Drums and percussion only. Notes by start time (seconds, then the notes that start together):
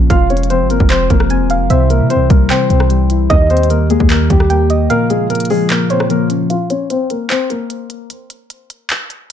0.10 kick, closed hi-hat
0.30 closed hi-hat
0.37 closed hi-hat
0.43 closed hi-hat
0.50 closed hi-hat
0.70 closed hi-hat
0.80 kick
0.90 clap, closed hi-hat
1.10 kick, closed hi-hat
1.20 cross-stick
1.30 closed hi-hat
1.50 closed hi-hat
1.70 closed hi-hat
1.90 closed hi-hat
2.10 closed hi-hat
2.30 kick, closed hi-hat
2.50 clap, closed hi-hat
2.70 closed hi-hat
2.80 cross-stick
2.90 closed hi-hat
3.10 closed hi-hat
3.30 kick, closed hi-hat
3.50 closed hi-hat
3.57 closed hi-hat
3.63 closed hi-hat
3.70 closed hi-hat
3.90 closed hi-hat
4.00 kick
4.10 clap, closed hi-hat
4.30 kick, closed hi-hat
4.40 cross-stick
4.50 closed hi-hat
4.70 closed hi-hat
4.90 closed hi-hat
5.10 closed hi-hat
5.30 closed hi-hat
5.35 closed hi-hat
5.40 closed hi-hat
5.45 closed hi-hat
5.50 open hi-hat
5.70 clap, closed hi-hat
5.90 closed hi-hat
6.00 cross-stick
6.10 closed hi-hat
6.30 closed hi-hat
6.50 closed hi-hat
6.70 closed hi-hat
6.90 closed hi-hat
7.10 closed hi-hat
7.30 clap, closed hi-hat
7.50 closed hi-hat
7.70 closed hi-hat
7.90 closed hi-hat
8.10 closed hi-hat
8.30 closed hi-hat
8.50 closed hi-hat
8.70 closed hi-hat
8.90 clap, closed hi-hat
9.10 closed hi-hat